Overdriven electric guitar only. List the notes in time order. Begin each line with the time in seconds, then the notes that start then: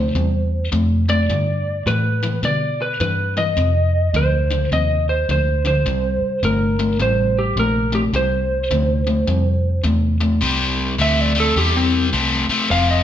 Already playing: C3 A3
0.15 C3 G3
0.72 C3 A3
1.09 C3 A3
1.30 G2 D3
1.87 G2 E3
2.23 G2 E3
2.43 G2 D3
3.00 G2 E3
3.37 G2 E3
3.57 F2 C3
4.14 F2 D3
4.51 F2 D3
4.72 F2 C3
5.29 F2 D3
5.65 F2 D3
5.86 C3 G3
6.43 C3 A3
6.79 C3 A3
6.99 C3 G3
7.57 C3 A3
7.92 C3 A3
8.13 C3 G3
8.71 C3 A3
9.07 C3 A3
9.27 C3 G3
9.84 C3 A3
10.20 C3 A3
10.41 C3 G3
10.98 C3 A3
11.35 C3 A3
11.56 C3 G3
12.13 C3 A3
12.49 C3 A3
12.71 F2 C3